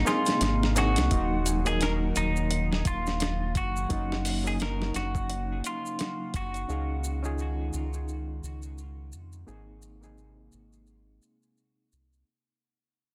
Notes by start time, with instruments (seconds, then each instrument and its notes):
Already playing: ambient pad C3 G#3 A#3 D#4, reed electric piano A#3 C4 D#4 G#4, clean electric guitar D#4
0.05 reed electric piano A#3 C4 D#4 G#4, clean electric guitar F4, snare, maracas
0.26 snare, closed hi-hat, maracas
0.41 analog synth bass G#1, snare, closed hi-hat, maracas
0.63 snare
0.75 reed electric piano A#3 C4 D#4 G#4, clean electric guitar F#4, snare, closed hi-hat, maracas
0.96 analog synth bass C2, snare, closed hi-hat, maracas
1.10 analog synth bass D#1, ambient pad D#3 F#3 A#3 D#4, reed electric piano F#3 A#3 D#4 F#4, kick, closed hi-hat, maracas
1.46 closed hi-hat, maracas
1.65 reed electric piano F#3 A#3 D#4 A#4, clean electric guitar G#4, closed hi-hat, maracas
1.81 clean electric guitar A#4, snare, closed hi-hat, maracas
2.16 analog synth bass D#1, clean electric guitar D#4, closed hi-hat, maracas
2.36 maracas
2.51 closed hi-hat, maracas
2.73 snare
2.85 analog synth bass D#1, clean electric guitar F4, kick, closed hi-hat, maracas
3.07 snare, maracas
3.20 snare, closed hi-hat, maracas
3.55 analog synth bass F#1, clean electric guitar F#4, kick, closed hi-hat, maracas
3.76 maracas
3.90 analog synth bass F#1, ambient pad C#3 F#3 D#4, reed electric piano F#3 A#3 C#4 D#4, kick, closed hi-hat, maracas
4.12 snare
4.25 open hi-hat, maracas
4.44 reed electric piano F#3 A#3 C#4 D#4, clean electric guitar G#4, maracas
4.60 clean electric guitar A#4, snare, closed hi-hat, maracas
4.82 snare
4.94 analog synth bass F#1, clean electric guitar F#4, snare, closed hi-hat, maracas
5.15 kick, maracas
5.30 closed hi-hat, maracas
5.64 clean electric guitar F4, closed hi-hat, maracas
5.86 maracas
5.99 snare, closed hi-hat, maracas
6.34 analog synth bass F#1, clean electric guitar F#4, kick, closed hi-hat, maracas
6.54 closed hi-hat, maracas
6.68 analog synth bass C#2, ambient pad D#3 G#3 D#4, reed electric piano C#4 D#4 G#4 F5, maracas
7.04 maracas
7.23 reed electric piano C#4 D#4 F4 G#4, maracas
7.38 maracas
7.73 analog synth bass C#2, maracas
7.94 maracas
8.08 maracas
8.43 analog synth bass C#2, maracas
8.62 maracas
8.78 maracas
9.13 analog synth bass F2, maracas
9.33 maracas
9.47 analog synth bass G#1, ambient pad C3 G#3 A#3, reed electric piano A#3 C4 D#4 G#4, maracas
9.82 maracas
10.01 reed electric piano A#3 C4 D#4 G#4, maracas
10.18 maracas
10.52 analog synth bass G#1, maracas
10.73 maracas
10.87 maracas
11.22 maracas
11.43 maracas
11.57 maracas
11.93 analog synth bass C2, maracas
12.13 maracas